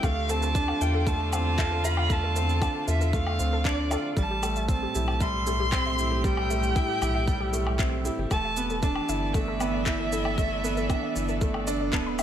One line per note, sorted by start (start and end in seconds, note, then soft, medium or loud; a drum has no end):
0.00 0.73 D2 loud
0.00 4.17 D3 medium
0.00 0.28 A3 medium
0.00 1.60 G4 medium
0.00 0.16 F5 medium
0.00 kick loud
0.00 low woodblock medium
0.00 shaker soft
0.04 0.32 F5 loud
0.23 4.17 F4 medium
0.29 0.54 C4 medium
0.29 0.42 A4 medium
0.29 0.83 A5 loud
0.29 shaker medium
0.42 0.52 A4 medium
0.42 shaker soft
0.55 0.80 D4 loud
0.55 kick loud
0.55 shaker soft
0.68 0.81 F5 medium
0.68 low woodblock medium
0.81 2.67 E2 loud
0.81 1.06 F4 medium
0.81 1.09 G5 medium
0.81 shaker medium
0.94 1.06 A4 medium
1.07 1.32 A3 medium
1.07 1.16 A4 medium
1.07 1.33 A5 loud
1.07 kick loud
1.07 shaker soft
1.33 1.57 C4 medium
1.33 1.45 F5 medium
1.33 1.87 A5 loud
1.33 low woodblock medium
1.33 shaker medium
1.58 1.83 F4 loud
1.58 1.71 A4 medium
1.58 kick loud
1.58 clap medium
1.58 shaker soft
1.72 1.81 A4 medium
1.84 2.09 F4 loud
1.84 2.13 B5 loud
1.84 shaker medium
1.97 2.10 F5 medium
1.97 low woodblock medium
2.10 2.35 A3 medium
2.10 2.89 A5 loud
2.10 kick loud
2.10 shaker soft
2.24 2.35 A4 medium
2.36 2.61 C4 medium
2.36 2.45 A4 medium
2.36 shaker medium
2.49 shaker soft
2.62 2.87 D4 medium
2.62 2.75 F5 medium
2.62 kick loud
2.62 low woodblock medium
2.62 shaker soft
2.88 3.39 E2 loud
2.88 3.12 F4 medium
2.88 3.00 A4 medium
2.88 3.16 E5 medium
2.88 shaker medium
3.01 3.10 A4 medium
3.01 shaker soft
3.13 3.38 A3 medium
3.13 3.69 F5 loud
3.13 kick loud
3.13 shaker soft
3.27 3.39 F5 medium
3.27 low woodblock medium
3.39 3.97 D2 medium
3.39 3.64 C4 medium
3.39 shaker medium
3.53 3.65 A4 medium
3.65 3.90 D4 loud
3.65 4.05 D5 medium
3.65 3.71 A5 medium
3.65 kick loud
3.65 clap medium
3.65 shaker soft
3.91 4.16 F4 medium
3.91 3.97 A4 medium
3.91 low woodblock medium
3.91 shaker medium
4.17 4.87 A1 loud
4.17 8.31 A2 medium
4.17 4.42 G3 medium
4.17 4.30 G4 medium
4.17 4.66 A5 loud
4.17 kick loud
4.17 shaker soft
4.31 4.40 G4 medium
4.43 4.68 A3 medium
4.43 low woodblock medium
4.43 shaker medium
4.56 4.69 E5 medium
4.56 shaker soft
4.69 4.94 C4 medium
4.69 5.23 A5 loud
4.69 kick loud
4.69 shaker soft
4.83 4.94 G4 medium
4.83 9.23 G4 medium
4.95 6.81 B1 loud
4.95 5.20 E4 medium
4.95 5.04 G4 medium
4.95 shaker medium
5.08 low woodblock medium
5.21 5.45 G3 medium
5.21 5.33 E5 medium
5.21 6.26 C6 loud
5.21 kick loud
5.21 shaker soft
5.47 5.71 A3 medium
5.47 5.59 G4 medium
5.47 shaker medium
5.60 5.69 G4 medium
5.72 5.97 C4 loud
5.72 kick loud
5.72 clap medium
5.72 low woodblock medium
5.72 shaker soft
5.86 5.98 E5 medium
5.98 6.23 E4 medium
5.98 shaker medium
6.12 6.23 G4 medium
6.24 6.49 G3 medium
6.24 6.33 G4 medium
6.24 8.06 G5 loud
6.24 kick loud
6.24 shaker soft
6.37 low woodblock medium
6.50 6.75 A3 medium
6.50 6.62 E5 medium
6.50 shaker medium
6.63 shaker soft
6.76 7.00 E4 loud
6.76 6.88 G4 medium
6.76 kick loud
6.76 shaker soft
6.89 6.98 G4 medium
7.02 7.78 B1 loud
7.02 7.26 E4 medium
7.02 low woodblock medium
7.02 shaker medium
7.15 7.27 E5 medium
7.28 7.52 G3 medium
7.28 kick loud
7.28 shaker soft
7.40 7.52 G4 medium
7.53 7.78 A3 medium
7.53 7.62 G4 medium
7.53 shaker medium
7.67 low woodblock medium
7.79 8.10 B1 loud
7.79 8.04 C4 medium
7.79 7.92 E5 medium
7.79 kick loud
7.79 clap medium
7.79 shaker soft
8.05 8.30 E4 medium
8.05 8.18 G4 medium
8.05 shaker medium
8.18 8.26 G1 medium
8.18 8.28 G4 medium
8.31 9.01 E1 loud
8.31 12.23 E3 medium
8.31 8.56 A3 medium
8.31 8.79 A5 loud
8.31 kick loud
8.31 low woodblock medium
8.31 shaker soft
8.45 8.57 E5 medium
8.57 8.82 B3 medium
8.57 shaker medium
8.70 12.23 B3 medium
8.70 8.82 A4 medium
8.70 shaker soft
8.83 9.08 D4 loud
8.83 8.92 A4 medium
8.83 12.23 A4 medium
8.83 9.37 A5 loud
8.83 kick loud
8.83 shaker soft
8.88 12.23 D5 medium
8.96 low woodblock medium
9.09 10.95 G1 loud
9.09 9.33 E4 medium
9.09 9.21 E5 medium
9.09 shaker medium
9.34 9.59 A3 medium
9.34 9.47 A4 medium
9.34 11.93 E5 loud
9.34 kick loud
9.34 shaker soft
9.48 9.57 A4 medium
9.60 9.85 B3 medium
9.60 low woodblock medium
9.60 shaker medium
9.74 9.86 E5 medium
9.86 10.11 E4 loud
9.86 kick loud
9.86 clap medium
9.86 shaker soft
9.99 10.11 A4 medium
10.12 10.37 E4 loud
10.12 10.21 A4 medium
10.12 shaker medium
10.25 low woodblock medium
10.38 10.63 A3 medium
10.38 10.51 E5 medium
10.38 kick loud
10.38 shaker soft
10.64 10.88 B3 medium
10.64 10.76 A4 medium
10.64 shaker medium
10.77 10.86 A4 medium
10.77 shaker soft
10.89 11.14 D4 medium
10.89 kick loud
10.89 low woodblock medium
10.89 shaker soft
11.03 11.15 E5 medium
11.15 11.92 G1 loud
11.15 11.40 E4 medium
11.15 shaker medium
11.28 11.41 A4 medium
11.28 shaker soft
11.41 11.66 A3 medium
11.41 11.51 A4 medium
11.41 kick loud
11.41 shaker soft
11.54 low woodblock medium
11.67 11.92 D4 loud
11.67 11.77 D5 medium
11.67 shaker medium
11.81 11.86 D5 medium
11.93 12.23 D1 medium
11.93 12.18 B3 loud
11.93 12.02 A5 medium
11.93 kick loud
11.93 clap medium
11.93 shaker soft
12.06 12.15 B5 medium
12.19 12.23 E4 medium
12.19 12.23 E5 loud
12.19 low woodblock medium
12.19 shaker medium